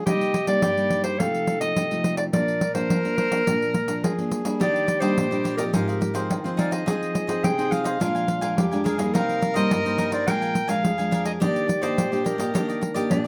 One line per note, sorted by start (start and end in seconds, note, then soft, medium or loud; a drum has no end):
0.06 0.60 C3 medium
0.06 0.33 G3 medium
0.06 0.33 A#3 medium
0.06 0.33 D#4 medium
0.06 0.59 G4 loud
0.06 0.46 D#5 medium
0.06 pandeiro medium
0.21 pandeiro soft
0.34 pandeiro medium
0.47 0.72 G3 medium
0.47 0.72 A#3 medium
0.47 0.72 D#4 medium
0.47 1.01 D5 medium
0.47 pandeiro medium
0.62 1.17 G2 medium
0.62 1.16 G4 medium
0.62 pandeiro medium
0.77 1.15 G3 medium
0.77 1.16 A#3 medium
0.77 1.16 D#4 medium
0.77 pandeiro soft
0.90 pandeiro medium
1.04 1.21 C5 medium
1.04 pandeiro medium
1.19 1.74 C3 medium
1.19 1.58 F3 medium
1.19 1.58 A3 medium
1.19 1.58 D#4 medium
1.19 2.02 A4 medium
1.19 1.60 F5 loud
1.19 pandeiro medium
1.35 pandeiro soft
1.47 pandeiro medium
1.61 1.85 F3 medium
1.61 1.86 A3 medium
1.61 1.86 D#4 medium
1.61 2.14 D#5 medium
1.61 pandeiro medium
1.76 2.30 C3 medium
1.76 pandeiro medium
1.91 2.29 F3 medium
1.91 2.29 A3 medium
1.91 2.29 D#4 medium
1.91 pandeiro soft
2.04 pandeiro medium
2.17 2.24 D5 medium
2.17 pandeiro medium
2.33 2.87 A#2 medium
2.33 2.60 F3 medium
2.33 2.60 A#3 medium
2.33 2.60 D4 medium
2.33 4.05 A#4 loud
2.33 2.73 D5 medium
2.33 pandeiro medium
2.48 pandeiro soft
2.61 pandeiro medium
2.74 2.89 F3 medium
2.74 2.99 A#3 medium
2.74 2.99 D4 medium
2.74 3.15 C5 medium
2.74 pandeiro medium
2.90 3.03 F3 medium
2.90 pandeiro medium
3.04 3.28 F3 medium
3.04 3.28 A#3 medium
3.04 3.28 D4 medium
3.04 pandeiro soft
3.18 3.44 C5 medium
3.18 pandeiro medium
3.31 3.41 F3 medium
3.31 3.41 A#3 medium
3.31 3.42 D4 medium
3.31 pandeiro medium
3.46 4.01 A#2 medium
3.46 3.73 F3 medium
3.46 3.73 A#3 medium
3.46 3.74 D4 medium
3.46 4.28 A#4 medium
3.46 pandeiro medium
3.62 pandeiro soft
3.74 pandeiro medium
3.88 4.02 F3 medium
3.88 4.12 A#3 medium
3.88 4.13 D4 medium
3.88 pandeiro medium
4.03 4.17 F3 medium
4.03 4.62 G#4 medium
4.03 pandeiro medium
4.18 4.42 F3 medium
4.18 4.42 A#3 medium
4.18 4.42 D4 medium
4.18 pandeiro soft
4.32 pandeiro medium
4.45 4.98 G3 medium
4.45 4.98 A#3 medium
4.45 4.98 D4 medium
4.45 pandeiro medium
4.60 5.14 D#3 medium
4.60 4.86 D4 medium
4.60 4.87 G4 medium
4.60 5.75 G4 medium
4.60 5.02 D5 loud
4.60 4.87 D5 medium
4.60 4.87 D#5 medium
4.60 pandeiro medium
4.76 pandeiro soft
4.87 muted cavaquinho stroke soft
4.87 pandeiro medium
5.00 5.26 G3 medium
5.00 5.26 A#3 medium
5.00 5.26 D4 medium
5.00 5.30 G4 medium
5.00 5.57 C5 medium
5.00 5.29 D5 medium
5.00 5.29 D#5 medium
5.00 pandeiro medium
5.17 5.71 A#2 medium
5.17 pandeiro medium
5.31 5.55 G3 medium
5.31 5.55 A#3 medium
5.31 5.55 D4 medium
5.31 5.44 G4 soft
5.31 5.44 D5 soft
5.31 5.44 D#5 soft
5.31 pandeiro soft
5.44 5.58 D4 medium
5.44 5.58 G4 soft
5.44 5.56 D5 soft
5.44 5.57 D#5 medium
5.44 pandeiro medium
5.57 6.11 F3 medium
5.57 6.11 C4 medium
5.57 6.11 D#4 medium
5.57 5.72 G4 soft
5.57 5.64 A#4 medium
5.57 5.71 D5 medium
5.57 5.72 D#5 medium
5.57 pandeiro medium
5.73 6.28 G#2 medium
5.73 5.86 D#4 medium
5.73 6.26 G4 medium
5.73 5.87 G#4 medium
5.73 6.60 A#4 medium
5.73 5.87 C5 medium
5.73 5.86 F5 medium
5.73 pandeiro medium
5.88 6.00 G#4 soft
5.88 6.00 C5 soft
5.88 6.00 F5 soft
5.88 pandeiro soft
6.01 muted cavaquinho stroke soft
6.01 pandeiro medium
6.14 6.39 F3 medium
6.14 6.39 C4 medium
6.14 6.40 D#4 medium
6.14 6.43 G#4 medium
6.14 6.43 C5 medium
6.14 6.42 F5 medium
6.14 pandeiro medium
6.30 6.84 D#3 medium
6.30 pandeiro medium
6.44 6.82 F3 medium
6.44 6.83 C4 medium
6.44 6.83 D#4 medium
6.44 6.56 G#4 soft
6.44 6.57 C5 soft
6.44 6.57 F5 soft
6.44 pandeiro soft
6.57 6.71 D#4 medium
6.57 6.71 G#4 medium
6.57 6.71 C5 medium
6.57 6.74 D5 medium
6.57 6.70 F5 medium
6.57 pandeiro medium
6.71 6.86 G#4 soft
6.71 6.86 C5 soft
6.71 7.46 D#5 medium
6.71 6.85 F5 soft
6.71 pandeiro medium
6.86 7.41 F3 medium
6.86 7.25 C4 soft
6.86 7.25 D#4 medium
6.86 7.13 F4 medium
6.86 7.13 G#4 medium
6.86 7.25 G#4 medium
6.86 7.97 G#4 medium
6.86 7.14 C5 medium
6.86 7.14 D#5 medium
6.86 pandeiro medium
7.03 pandeiro soft
7.14 muted cavaquinho stroke soft
7.14 pandeiro medium
7.27 7.52 C4 medium
7.27 7.53 D#4 medium
7.27 7.53 G#4 medium
7.27 7.57 G#4 medium
7.27 7.56 C5 medium
7.27 7.56 D#5 medium
7.27 pandeiro medium
7.43 7.97 C3 medium
7.43 7.73 G5 loud
7.43 pandeiro medium
7.58 7.96 C4 medium
7.58 7.96 D#4 medium
7.58 7.96 G#4 medium
7.58 7.71 G#4 soft
7.58 7.71 C5 soft
7.58 7.71 D#5 soft
7.58 pandeiro soft
7.71 7.85 F4 medium
7.71 7.85 G#4 medium
7.71 7.84 C5 medium
7.71 7.83 D#5 medium
7.71 8.85 F5 medium
7.71 pandeiro medium
7.84 7.99 G#4 soft
7.84 7.99 C5 medium
7.84 7.98 D#5 medium
7.84 pandeiro medium
8.00 8.54 A#2 medium
8.00 8.38 F3 medium
8.00 8.39 G#3 medium
8.00 8.13 D4 medium
8.00 8.39 D4 medium
8.00 8.59 F4 medium
8.00 8.14 A#4 medium
8.00 8.14 F5 medium
8.00 8.14 G#5 medium
8.00 pandeiro medium
8.15 8.27 A#4 soft
8.15 8.28 F5 soft
8.15 8.28 G#5 soft
8.15 pandeiro soft
8.28 muted cavaquinho stroke soft
8.28 pandeiro medium
8.41 8.66 F3 medium
8.41 8.66 G#3 medium
8.41 8.67 D4 medium
8.41 8.70 A#4 medium
8.41 8.70 F5 medium
8.41 8.69 G#5 medium
8.41 pandeiro medium
8.57 9.11 F2 medium
8.57 8.86 G4 medium
8.57 pandeiro medium
8.71 8.96 F3 medium
8.71 8.96 G#3 medium
8.71 8.96 D4 medium
8.71 8.84 A#4 soft
8.71 8.85 F5 soft
8.71 8.85 G#5 soft
8.71 pandeiro soft
8.84 8.98 D4 medium
8.84 9.15 G#4 medium
8.84 8.98 A#4 medium
8.84 8.98 F5 medium
8.84 8.97 G#5 medium
8.84 pandeiro medium
8.98 9.52 G3 medium
8.98 9.52 A#3 medium
8.98 9.52 D#4 medium
8.98 9.13 A#4 soft
8.98 9.12 F5 soft
8.98 9.12 G#5 soft
8.98 pandeiro medium
9.14 9.68 C3 medium
9.14 9.40 D#4 medium
9.14 10.27 A#4 loud
9.14 9.40 A#4 medium
9.14 9.41 C5 medium
9.14 9.41 D#5 medium
9.14 9.54 F5 medium
9.14 pandeiro medium
9.29 pandeiro soft
9.41 muted cavaquinho stroke soft
9.41 pandeiro medium
9.54 9.80 G3 medium
9.54 9.80 A#3 medium
9.54 9.80 D#4 medium
9.54 9.84 A#4 medium
9.54 9.83 C5 medium
9.54 9.83 D#5 medium
9.54 10.09 D#5 medium
9.54 pandeiro medium
9.71 10.25 G2 medium
9.71 pandeiro medium
9.85 10.23 G3 medium
9.85 10.23 A#3 medium
9.85 10.23 D#4 medium
9.85 9.97 A#4 soft
9.85 9.98 C5 soft
9.85 9.98 D#5 soft
9.85 pandeiro soft
9.98 10.11 D#4 medium
9.98 10.12 A#4 medium
9.98 10.12 C5 medium
9.98 10.11 D#5 medium
9.98 pandeiro medium
10.12 10.26 A#4 soft
10.12 10.26 C5 medium
10.12 10.30 D5 medium
10.12 10.26 D#5 medium
10.12 pandeiro medium
10.27 10.81 A#2 medium
10.27 10.54 F3 medium
10.27 10.54 G#3 medium
10.27 10.40 D4 medium
10.27 10.54 D4 medium
10.27 10.85 A#4 medium
10.27 10.41 A#4 medium
10.27 10.41 F5 medium
10.27 10.69 G5 loud
10.27 10.40 G#5 medium
10.27 pandeiro medium
10.41 10.54 A#4 soft
10.41 10.54 F5 soft
10.41 10.55 G#5 medium
10.41 pandeiro soft
10.55 muted cavaquinho stroke soft
10.55 pandeiro medium
10.68 10.93 F3 medium
10.68 10.93 G#3 medium
10.68 10.93 D4 medium
10.68 10.97 A#4 soft
10.68 10.97 F5 medium
10.68 11.23 F5 loud
10.68 10.96 G#5 medium
10.68 pandeiro medium
10.84 11.38 F2 medium
10.84 11.42 G#4 medium
10.84 pandeiro medium
10.98 11.36 F3 medium
10.98 11.37 G#3 medium
10.98 11.37 D4 medium
10.98 11.11 A#4 soft
10.98 11.11 F5 soft
10.98 11.11 G#5 medium
10.98 pandeiro soft
11.11 11.25 D4 medium
11.11 11.25 A#4 medium
11.11 11.25 F5 medium
11.11 11.24 G#5 medium
11.11 pandeiro medium
11.25 11.40 A#4 soft
11.25 11.33 D#5 medium
11.25 11.39 F5 soft
11.25 11.39 G#5 medium
11.25 pandeiro medium
11.40 11.95 D#3 medium
11.40 11.67 A#3 medium
11.40 11.67 D4 medium
11.40 11.68 D4 medium
11.40 12.83 G4 medium
11.40 11.67 G4 medium
11.40 11.68 G4 medium
11.40 11.68 D5 medium
11.40 11.84 D5 medium
11.40 11.67 D#5 medium
11.40 pandeiro medium
11.56 pandeiro soft
11.68 muted cavaquinho stroke soft
11.68 pandeiro medium
11.82 12.07 A#3 medium
11.82 12.07 D4 medium
11.82 12.07 G4 medium
11.82 12.11 G4 medium
11.82 12.25 C5 medium
11.82 12.10 D5 medium
11.82 12.10 D#5 medium
11.82 pandeiro medium
11.97 12.51 A#2 medium
11.97 pandeiro medium
12.12 12.36 A#3 medium
12.12 12.36 D4 medium
12.12 12.36 G4 medium
12.12 12.24 G4 soft
12.12 12.25 D5 soft
12.12 12.25 D#5 soft
12.12 pandeiro soft
12.24 12.38 D4 soft
12.24 12.39 G4 medium
12.24 13.27 A#4 medium
12.24 12.37 D5 medium
12.24 12.38 D#5 medium
12.24 pandeiro medium
12.38 12.49 A#3 medium
12.38 12.49 D4 medium
12.38 12.49 G4 medium
12.38 12.53 G4 soft
12.38 12.52 D5 medium
12.38 12.53 D#5 medium
12.38 pandeiro medium
12.54 13.08 D#3 medium
12.54 12.92 A#3 medium
12.54 12.67 D4 medium
12.54 12.92 D4 medium
12.54 12.92 G4 medium
12.54 12.67 G4 medium
12.54 12.67 D5 medium
12.54 12.68 D#5 medium
12.54 pandeiro medium
12.69 12.80 G4 soft
12.69 12.81 D5 medium
12.69 12.81 D#5 soft
12.69 pandeiro soft
12.81 muted cavaquinho stroke soft
12.81 pandeiro medium
12.94 13.20 A#3 medium
12.94 13.20 D4 medium
12.94 13.20 G4 medium
12.94 13.24 G4 medium
12.94 13.23 D5 medium
12.94 13.23 D#5 medium
12.94 pandeiro medium
13.10 13.27 A#2 medium
13.10 13.27 D4 loud
13.10 pandeiro medium